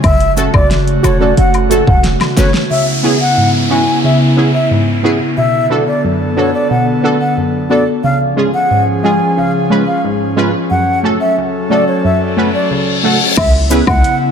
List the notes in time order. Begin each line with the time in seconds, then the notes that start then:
Already playing: C#3
0.04 F#1 A3 F#4 E5, kick, closed hi-hat, high woodblock
0.20 closed hi-hat
0.36 A3 C#4 F#4 A4, closed hi-hat, cabasa
0.53 F#1 D5, kick, high woodblock
0.71 snare, closed hi-hat
0.87 closed hi-hat
1.03 E1 F#4 A4 C#5, closed hi-hat, cabasa, high woodblock
1.20 A3 C#4 F#4 A4 D5
1.37 F#1 F#5, closed hi-hat
1.54 closed hi-hat, high woodblock
1.70 A3 C#4 F#4 A4, closed hi-hat, cabasa
1.87 E1 F#5, kick
2.04 snare, closed hi-hat
2.21 snare, closed hi-hat, high woodblock
2.36 F#1 A3 C#4 F#4 B4 C#5, snare, closed hi-hat, cabasa
2.54 snare
2.70 C#3 B3 E4 E5, downlifter
3.03 B3 C#4 E4 G#4
3.21 F#5
3.37 G#2
3.70 B3 C#4 E4 F#4 G#5
4.04 C#3 E5
4.36 B3 C#4 E4 G#4
4.54 E5
4.71 G#2
5.03 B3 C#4 E4 G#4
5.37 B2 D3 B3 A4 E5
5.70 B3 D4 F#4 A4
5.87 D5
6.04 F#2
6.36 B3 D4 F#4 A4 C#5
6.54 D5
6.71 B2 F#5
7.03 B3 D4 F#4 A4
7.21 F#5
7.37 F#2
7.70 B3 D4 F#4 A4 D5
8.04 C#3 F3 C#4 G#4 F5
8.36 G#3 C#4 F4 G#4
8.54 F#5
8.71 G#2
9.03 G#3 C#4 F4 G#4 G#5
9.37 C#3 F5
9.70 G#3 C#4 F4 B4
9.87 F5
10.04 G#2
10.36 G#3 C#4 F4 B4
10.70 F#2 F#3 A4 F#5
11.03 A3 C#4 F#4 A4
11.21 E5
11.37 C#3
11.70 A3 C#4 F#4 A4 D5
11.88 C#5
12.04 F#2 E5, reverse cymbal
12.37 A3 C#4 F#4 B4
12.54 D5
12.71 C#3
13.03 A3 C#4 F#4 A4 F#5
13.37 C#2 C#3 B3 E4 E5, kick, closed hi-hat, crash, high woodblock
13.70 B3 C#4 E4 G#4 B4, closed hi-hat, cabasa
13.87 C#2 F#5, kick, high woodblock
14.04 closed hi-hat